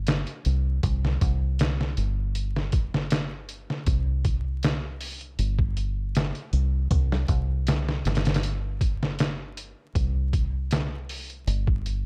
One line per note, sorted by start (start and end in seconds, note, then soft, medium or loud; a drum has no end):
0.00 0.24 G1 medium
0.07 snare loud
0.07 closed hi-hat medium
0.27 closed hi-hat soft
0.45 0.79 C2 medium
0.45 closed hi-hat medium
0.83 1.17 C2 loud
0.83 kick loud
0.83 closed hi-hat medium
1.05 snare soft
1.21 1.94 C2 loud
1.21 kick loud
1.21 closed hi-hat medium
1.59 snare loud
1.59 closed hi-hat medium
1.81 snare soft
1.97 3.65 G1 medium
1.97 closed hi-hat medium
2.35 closed hi-hat medium
2.56 snare soft
2.72 kick medium
2.72 closed hi-hat medium
2.94 snare medium
3.10 snare loud
3.10 closed hi-hat medium
3.49 closed hi-hat medium
3.70 snare soft
3.86 5.35 C2 loud
3.86 kick loud
3.86 closed hi-hat medium
4.25 kick medium
4.25 closed hi-hat medium
4.63 snare loud
4.63 closed hi-hat medium
5.01 open hi-hat medium
5.21 closed hi-hat soft
5.39 6.31 G1 medium
5.39 closed hi-hat medium
5.59 kick medium
5.77 closed hi-hat medium
6.15 snare loud
6.15 closed hi-hat medium
6.35 closed hi-hat soft
6.53 6.87 C2 medium
6.53 closed hi-hat medium
6.91 7.25 C2 loud
6.91 kick loud
6.91 closed hi-hat medium
7.12 snare medium
7.28 8.01 C2 loud
7.28 kick loud
7.28 closed hi-hat medium
7.67 snare loud
7.67 closed hi-hat medium
7.88 snare medium
8.05 9.73 G1 medium
8.05 snare medium
8.05 closed hi-hat medium
8.15 snare medium
8.15 closed hi-hat medium
8.25 snare medium
8.25 closed hi-hat medium
8.34 snare medium
8.34 closed hi-hat medium
8.43 closed hi-hat medium
8.81 kick loud
8.81 closed hi-hat medium
9.03 snare medium
9.19 snare loud
9.19 closed hi-hat medium
9.57 closed hi-hat medium
9.95 11.43 C2 loud
9.95 kick loud
9.95 closed hi-hat medium
10.33 kick loud
10.33 closed hi-hat medium
10.71 snare loud
10.71 closed hi-hat medium
11.09 open hi-hat medium
11.30 closed hi-hat soft
11.47 12.06 G1 medium
11.47 closed hi-hat medium
11.67 kick medium
11.86 closed hi-hat medium